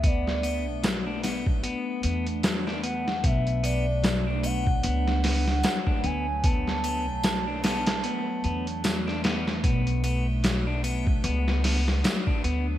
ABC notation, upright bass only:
X:1
M:4/4
L:1/16
Q:"Swing 16ths" 1/4=75
K:Bm
V:1 name="Upright bass" clef=bass
D,,3 B,,,4- B,,, z2 E,,6 | B,,,8 C,,4 z2 D,,2- | D,,3 B,,,4- B,,, z2 E,,6 | B,,,8 C,,4 z2 D,,2 |]